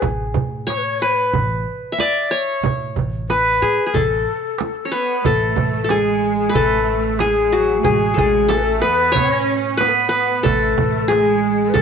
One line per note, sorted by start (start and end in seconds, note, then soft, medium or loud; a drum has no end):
0.00 0.33 A1 medium
0.00 0.63 G#4 medium
0.00 frame drum medium
0.00 darbuka dum medium
0.34 1.35 A2 medium
0.34 frame drum medium
0.34 darbuka dum medium
0.67 1.69 C#5 medium
0.67 0.79 C#5 medium
0.67 darbuka tek medium
0.67 frame drum medium
0.77 0.85 B4 medium
0.83 1.02 C#5 medium
1.00 1.33 B4 medium
1.00 2.11 B4 medium
1.00 darbuka ka soft
1.33 1.63 A1 medium
1.33 frame drum medium
1.33 darbuka dum medium
1.51 darbuka ka soft
1.92 2.84 E5 medium
1.98 2.24 D5 medium
1.98 2.37 D5 loud
1.98 darbuka tek medium
1.98 frame drum medium
2.24 2.32 D5 medium
2.30 2.64 C#5 medium
2.30 3.33 C#5 medium
2.30 darbuka ka soft
2.63 2.94 A2 medium
2.63 frame drum medium
2.63 darbuka dum medium
2.96 3.58 A1 medium
2.96 frame drum medium
2.96 darbuka dum medium
3.29 3.88 B4 medium
3.29 4.39 B4 medium
3.29 darbuka tek medium
3.29 frame drum medium
3.62 3.77 A2 medium
3.62 3.86 G#4 medium
3.86 4.00 G#4 medium
3.86 3.95 B4 medium
3.93 4.24 A1 medium
3.93 4.92 A4 medium
3.93 5.11 A4 medium
3.93 darbuka dum medium
3.93 frame drum medium
4.11 darbuka ka soft
4.26 darbuka ka soft
4.42 darbuka ka soft
4.58 darbuka tek medium
4.58 frame drum medium
4.75 darbuka ka soft
4.85 4.92 C#4 soft
4.85 5.88 C#5 medium
4.92 5.25 B3 medium
4.92 6.01 B4 medium
4.92 5.27 B4 medium
4.92 darbuka ka soft
5.24 5.55 A1 medium
5.24 5.90 A3 medium
5.24 5.72 A4 medium
5.24 5.84 A4 medium
5.24 darbuka dum medium
5.24 frame drum loud
5.56 6.52 A1 medium
5.56 frame drum medium
5.56 darbuka dum medium
5.72 5.92 A4 medium
5.84 6.54 G#3 medium
5.84 5.96 A4 medium
5.89 6.61 G#4 medium
5.89 6.37 G#4 medium
5.89 darbuka tek medium
5.89 frame drum medium
6.22 darbuka ka soft
6.38 6.55 G#4 medium
6.49 7.20 A3 medium
6.49 7.59 B4 medium
6.54 7.81 A1 loud
6.54 7.19 A4 medium
6.54 7.26 A4 loud
6.54 frame drum medium
6.54 darbuka dum medium
7.04 darbuka ka soft
7.18 7.53 G#3 medium
7.18 7.81 G#4 medium
7.18 7.84 G#4 medium
7.18 darbuka tek medium
7.18 frame drum medium
7.35 darbuka ka soft
7.52 7.79 F#3 medium
7.52 8.82 F#4 medium
7.78 7.86 A3 medium
7.78 7.92 G#4 medium
7.84 8.15 A1 loud
7.84 8.16 G#3 medium
7.84 8.18 G#4 medium
7.84 darbuka dum medium
7.84 frame drum medium
7.90 8.01 F#4 medium
7.99 8.52 G#4 medium
8.14 8.79 A1 loud
8.14 8.48 G#3 medium
8.14 8.24 A4 medium
8.14 darbuka dum medium
8.14 frame drum medium
8.18 8.55 G#4 medium
8.49 8.83 A3 medium
8.49 9.66 A4 medium
8.49 8.58 A4 medium
8.49 darbuka tek medium
8.49 frame drum medium
8.56 8.65 B4 medium
8.64 8.83 A4 medium
8.82 9.13 E2 medium
8.82 9.15 B3 medium
8.82 9.77 B4 medium
8.82 9.18 B4 medium
9.12 10.42 A2 medium
9.12 10.14 C#5 loud
9.12 darbuka dum medium
9.16 9.77 C#4 loud
9.16 9.54 C#5 medium
9.16 frame drum medium
9.64 darbuka ka soft
9.77 10.09 B4 loud
9.77 9.90 B4 medium
9.77 darbuka tek medium
9.77 frame drum medium
9.82 10.46 B3 medium
9.88 9.96 A4 medium
9.94 10.12 B4 medium
9.94 darbuka ka soft
10.09 11.18 B4 loud
10.09 10.46 B4 medium
10.43 10.76 A1 loud
10.43 11.11 A3 medium
10.43 11.14 A4 medium
10.43 11.11 A4 medium
10.43 frame drum medium
10.43 darbuka dum loud
10.77 11.72 A1 medium
10.77 darbuka dum loud
10.77 frame drum medium
11.08 11.23 A3 medium
11.08 11.80 G#4 medium
11.08 11.71 G#4 medium
11.08 darbuka tek medium
11.08 frame drum medium
11.23 11.76 G#3 medium
11.43 darbuka ka soft
11.69 11.78 B4 medium
11.74 11.82 A1 loud
11.74 11.82 G#3 medium
11.74 11.82 A4 medium
11.74 darbuka dum medium
11.74 frame drum medium